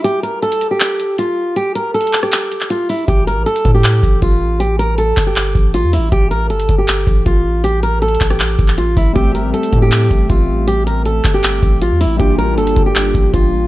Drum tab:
HH |x-----x-----x--x--x-----x-----x-----x-----------|x-----x-----x-x-x-x--x--x-----x-----x-----o-----|x-----x-----x--x--x-----x-----x-----x-----------|x-----x-----x-----x-----x-----x-----x-----o-----|
CP |------------------------x-----------------------|------------------x-----x--------x--------------|------------------------x-----------------------|------------------x-----x-----------------------|
SD |------------------------------------------------|---------------------r--------------------------|------------------------------------------------|------------------------------------------------|
BD |------------------------------------------------|------------------------------------------------|o-----------------o-----------o-----o-----------|------------------o-----------o-----------------|

HH |x-----x-----x--x--x-----x-----x-----x-----------|x-----x-----x-x-x-x--x--x-----x-----x-----o-----|x-----x-----x--x--x-----x-----x-----x-----------|x-----x-----x-----x-----x-----x-----x-----o-----|
CP |------------------------x-----------------------|------------------x-----x--------x--------------|------------------------x-----------------------|------------------x-----x-----------------------|
SD |------------------------------------------------|---------------------r--------------------------|------------------------------------------------|------------------------------------------------|
BD |o-----------------o-----------o-----o-----------|------------------o-----------o-----------o-----|o-----------------o-----------o-----o-----------|------------------o-----------o-----------------|

HH |x-----x-----x--x--x-----x-----x-----x-----------|
CP |------------------------x-----------------------|
SD |------------------------------------------------|
BD |o-----------------o-----------o-----o-----------|